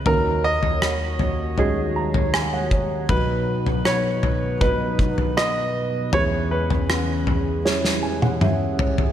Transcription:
<<
  \new Staff \with { instrumentName = "Grand piano" } { \time 4/4 \key b \major \tempo 4 = 79 ais'8 dis''2 r4. | b'4 cis''4 b'4 dis''4 | cis''8 b'2 r4. | }
  \new Staff \with { instrumentName = "Upright piano" } { \time 4/4 \key b \major << { r2 r8 ais''8 gis''16 fis''16 cis''8 | r1 | r2 r8 gis''16 fis''16 e''8 cis''8 | } \\ { <cis' dis' fis' ais'>2 <cis' dis' fis' gis'>2 | <b dis' fis' b'>2 <b dis' fis' b'>2 | <cis' e' gis' b'>2 <cis' e' gis' cis''>2 | } >> }
  \new Staff \with { instrumentName = "Upright piano" } { \clef bass \time 4/4 \key b \major <dis, dis>1 | <b,, b,>1 | <e, e>1 | }
  \new Staff \with { instrumentName = "Analog synth pad" } { \time 4/4 \key b \major <dis, dis fis' cis''>1 | <b, fis dis' b'>1 | <e, e cis' gis'>1 | }
  \new DrumStaff \with { instrumentName = "Drums" } \drummode { \time 4/4 tomfh8. tomfh16 ss8 tomfh8 tomfh8. tomfh16 ss8 bd8 | <bd tomfh>8. tomfh16 ss8 tomfh8 <bd tomfh>8 bd16 tomfh16 ss4 | tomfh8. tomfh16 ss8 tomfh8 sn16 sn8 tommh16 toml8 tomfh16 tomfh16 | }
>>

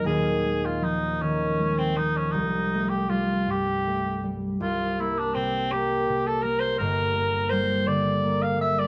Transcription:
<<
  \new Staff \with { instrumentName = "Cor anglais" } { \time 6/8 \key bes \minor \tempo 4. = 53 aes'8. f'16 ees'8 des'8. c'16 ees'16 des'16 | ees'8. g'16 f'8 g'4~ g'16 r16 | f'8 fes'16 d'16 c'8 g'8. a'16 bes'16 c''16 | \key g \dorian bes'4 c''8 d''8. f''16 e''16 d''16 | }
  \new Staff \with { instrumentName = "Harp" } { \clef bass \time 6/8 \key bes \minor <ees,, ees,>8 aes8 f8 ees8 aes8 f8 | c,8 a8 g8 g,8 a8 g8 | c,8 bes8 c8 bes8 c8 bes8 | \key g \dorian <g,, g,>8 bes8 g8 d8 bes8 g8 | }
>>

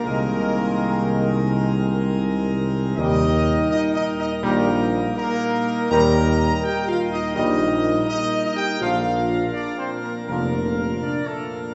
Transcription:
<<
  \new Staff \with { instrumentName = "Trumpet section" } { \time 4/4 \key ees \lydian \tempo 4 = 82 bes'2. r4 | ees''4 \tuplet 3/2 { ees''8 ees''8 ees''8 } bes'4 bes'4 | bes''4 \tuplet 3/2 { g''8 f''8 ees''8 } ees''4 \tuplet 3/2 { ees''8. ees''16 g''8 } | f''4 \tuplet 3/2 { d''8 c''8 bes'8 } bes'4 \tuplet 3/2 { d''8 a'8 bes'8 } | }
  \new Staff \with { instrumentName = "French horn section" } { \time 4/4 \key ees \lydian bes2. r4 | ees'4 \tuplet 3/2 { ees'8 ees'8 ees'8 } bes4 bes4 | bes'4 \tuplet 3/2 { g'8 f'8 ees'8 } ees'4 \tuplet 3/2 { ees'8. ees'16 g'8 } | f'4 \tuplet 3/2 { d'8 c'8 bes8 } bes4 \tuplet 3/2 { d'8 a8 bes8 } | }
  \new Staff \with { instrumentName = "Pipe organ" } { \time 4/4 \key ees \lydian << { <c bes'>1 | <bes, bes'>1 | <bes, bes'>1~ | <bes, bes'>1 | } \\ { <aes ees'>1 | <g ees'>1 | <g ees'>1 | <f d'>1 | } >> }
  \new Staff \with { instrumentName = "Trombone section" } { \clef bass \time 4/4 \key ees \lydian <ees aes>1 | <ees g>8 r4. <ees g>8 r4. | <ees g>8 r4. <ees g>8 r4. | <d f>8 r4. <d f>8 r4. | }
  \new Staff \with { instrumentName = "Tuba" } { \clef bass \time 4/4 \key ees \lydian c,1 | ees,4 r4 bes,,4 r4 | ees,4 r4 bes,,4 r4 | bes,,4 r4 f,,4 r4 | }
>>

